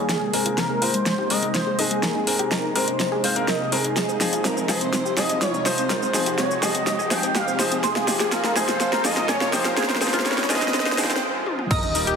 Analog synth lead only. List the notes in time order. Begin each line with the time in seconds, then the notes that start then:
Already playing: G#4
0.58 A#4
0.82 C5
1.30 D#5
1.55 C5
1.79 G#4
2.51 A#4
2.76 C5
3.24 F5
3.48 D#5
3.72 G#4
4.45 A#4
4.69 C5
5.17 D#5
5.42 C#5
5.66 C5
6.38 C#5
6.63 D#5
7.11 G5
7.35 F5
7.59 G#4
8.07 G4
8.32 A#4
8.56 C5
9.05 D#5
9.29 C#5
9.53 C5
10.26 C#5
10.50 D#5
10.98 G5
11.71 D#5